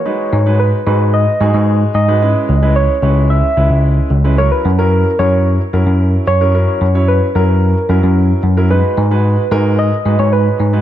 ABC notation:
X:1
M:4/4
L:1/16
Q:1/4=111
K:G#m
V:1 name="Soft synth lead"
c4 B2 B2 d6 d2- | d4 c2 c2 e6 z2 | c B2 A3 c4 z4 c2- | c4 B2 A6 z4 |
B8 d3 c B3 z |]
V:2 name="Grand piano"
[G,DFB]2 z [G,DFB]2 z [G,DFB]3 z [G,DFG]4 z [G,DFB] | [G,CEB]2 z [G,CEB]2 z [G,CEB]3 z [G,CEB]4 z [G,CEB] | [F,CEA]2 z [F,CEA]2 z [F,CEA]3 z [F,CEA]4 z [F,CEA] | [F,CEA]2 z [F,CEc]2 z [F,CEA]3 z [F,CEA]4 z [F,CEA] |
[G,DFB]2 z [G,DFB]2 z [G,DFA]3 z [G,DFB]4 z [G,DFB] |]
V:3 name="Tine electric piano" clef=bass
z2 G,,4 G,,4 G,, G,,3 G,,2- | G,,2 C,,4 C,,4 C,, C,,3 C,,2- | C,,2 F,,4 F,,4 F,, F,,3 F,,2- | F,,2 F,,4 F,,4 F,, F,,3 F,,2- |
F,,2 G,,4 G,,4 G,, G,,3 G,,2 |]